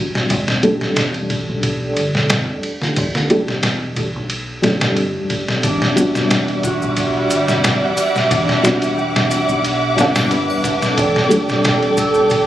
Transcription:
Already playing: felt piano G3 B3 D4 F#4
0.15 snare
0.30 fingered electric bass E1, kick, ride
0.48 snare
0.63 fingered electric bass B1, felt piano G3 A3 D4, ride
0.67 felt piano G4
0.81 fingered electric bass E1, snare
0.96 snare, ride
1.14 ride
1.30 kick, ride
1.49 fingered electric bass B1
1.63 kick, ride
1.97 fingered electric bass G1, ride
2.15 snare
2.30 snare, ride
2.49 fingered electric bass E1
2.63 ride
2.82 snare
2.96 fingered electric bass E1, kick, ride
3.15 snare
3.30 fingered electric bass B1, felt piano G3 A3 D4 G4, ride
3.48 fingered electric bass E1, snare
3.63 snare, ride
3.96 kick, ride
4.15 fingered electric bass B1
4.30 ride
4.62 fingered electric bass G1, felt piano G3 A3 D4, snare, ride
4.67 felt piano G4
4.81 snare
4.97 ride
5.16 fingered electric bass E1
5.30 kick, ride
5.48 snare
5.63 fingered electric bass E1, string section G3 E5 F#5 D6, harp D4, kick, ride, maracas
5.82 snare
5.96 fingered electric bass B1, felt piano G3 B3 D4, ride, maracas
6.00 felt piano F#4
6.15 fingered electric bass E1, snare, maracas
6.31 snare, ride, maracas
6.48 ride
6.63 harp F#4, kick, ride, maracas
6.82 fingered electric bass B1, maracas
6.97 kick, ride, maracas
7.30 fingered electric bass G1, ride, maracas
7.48 snare, maracas
7.64 snare, ride, maracas
7.83 fingered electric bass E1
7.97 ride, triangle, maracas
8.16 snare, maracas
8.31 fingered electric bass E1, harp D4, kick, ride, maracas
8.49 snare
8.63 fingered electric bass B1, felt piano G3 B3 D4 F#4, snare, maracas
8.82 fingered electric bass E1, ride, maracas
8.97 harp G4, maracas
9.16 snare
9.31 ride, triangle, maracas
9.49 fingered electric bass B1, maracas
9.64 ride, maracas
9.96 fingered electric bass G1, felt piano G3 B3 D4, harp D4, snare, ride, maracas
10.01 felt piano F#5
10.15 snare, triangle, maracas
10.31 harp B4, ride, maracas
10.50 fingered electric bass E1, triangle
10.63 harp D4, kick, ride, maracas
10.82 snare, maracas
10.97 fingered electric bass E1, harp D4, string section A4 D5 G5, kick, ride, maracas
11.16 snare
11.29 fingered electric bass B1, felt piano G3 A3 D4, ride, maracas
11.33 felt piano G4
11.49 fingered electric bass E1, snare, maracas
11.64 snare, ride, maracas
11.83 ride
11.97 harp A4, kick, ride, maracas
12.14 fingered electric bass B1, maracas
12.30 kick, ride, maracas

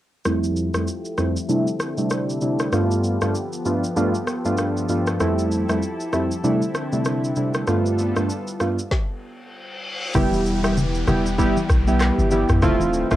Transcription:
0.25 synth keys F2 G3 A3 C4 E4, analog synth pad F3 A3 E4 G4, cross-stick, shaker
0.44 shaker
0.56 shaker
0.74 synth keys F2 G3 A3 C4 E4, cross-stick, shaker
0.88 shaker
1.05 shaker
1.18 synth keys F2 G3 A3 C4 E4, cross-stick, shaker
1.37 shaker
1.49 synth keys C3 G3 A3 D4 E4, analog synth pad D3 C4 A4, shaker
1.67 shaker
1.80 cross-stick, shaker
1.98 synth keys C3 G3 A3 D4 E4, shaker
2.10 cross-stick, shaker
2.30 shaker
2.41 synth keys C3 G3 A3 D4 E4, shaker
2.59 cross-stick, shaker
2.72 synth keys G2 A3 B3 D4 F4, analog synth pad F3 B3 G4 A4, cross-stick, shaker
2.91 shaker
3.04 shaker
3.21 synth keys G2 A3 B3 D4 F4, cross-stick, shaker
3.35 shaker
3.53 shaker
3.65 synth keys G2 A3 B3 D4 F4, shaker
3.84 shaker
3.96 synth keys G2 A3 B3 D4 F4, shaker
4.15 shaker
4.27 cross-stick, shaker
4.45 synth keys G2 A3 B3 D4 F4, shaker
4.58 cross-stick, shaker
4.77 shaker
4.89 synth keys G2 A3 B3 D4 F4, shaker
5.07 cross-stick, shaker
5.20 synth keys F2 G3 A3 C4 E4, analog synth pad E4, cross-stick, shaker
5.39 shaker
5.51 shaker
5.69 synth keys F2 G3 A3 C4 E4, cross-stick, shaker
5.83 shaker
6.00 shaker
6.13 synth keys F2 G3 A3 C4 E4, cross-stick, shaker
6.31 shaker
6.44 synth keys C3 G3 A3 D4 E4, analog synth pad D3 C4 E4, shaker
6.62 shaker
6.75 cross-stick, shaker
6.92 synth keys C3 G3 A3 D4 E4, shaker
7.05 cross-stick, shaker
7.24 shaker
7.36 synth keys C3 G3 A3 D4 E4, shaker
7.54 cross-stick, shaker
7.67 synth keys G2 A3 B3 D4 F4, analog synth pad G3 B3 F4 A4, cross-stick, shaker
7.86 shaker
7.99 shaker
8.16 synth keys G2 A3 B3 D4 F4, cross-stick, shaker
8.30 shaker
8.47 shaker
8.60 synth keys G2 A3 B3 D4 F4, cross-stick, shaker
8.79 shaker
8.91 kick, snare, reverse cymbal
10.15 sub bass E1, analog synth pad E3 G3 B3 G4, synth keys G3 B3 E4 G4, kick, cross-stick, downlifter, low conga, shaker
10.32 high conga, shaker
10.46 shaker
10.63 synth keys G3 B3 E4 G4, cross-stick, shaker
10.77 low conga, shaker
10.95 shaker
11.07 sub bass E1, synth keys G3 B3 E4 G4, cross-stick, high conga, low conga, shaker
11.26 shaker
11.38 synth keys G3 B3 E4 G4, kick, shaker
11.57 high conga, shaker
11.70 sub bass B1, kick, cross-stick, shaker
11.87 synth keys G3 B3 E4 G4, shaker
12.00 cross-stick, clap, shaker
12.18 sub bass G1, high conga, shaker
12.31 synth keys G3 B3 E4 G4, high conga, shaker
12.49 sub bass A1, cross-stick, mid tom, shaker
12.62 sub bass D1, analog synth pad D3 F3 A3 C4, synth keys A3 C4 E4 F4, kick, cross-stick, low conga, shaker
12.80 high conga, shaker
12.94 shaker
13.11 sub bass E1, synth keys A3 C4 E4 F4, kick, cross-stick, shaker

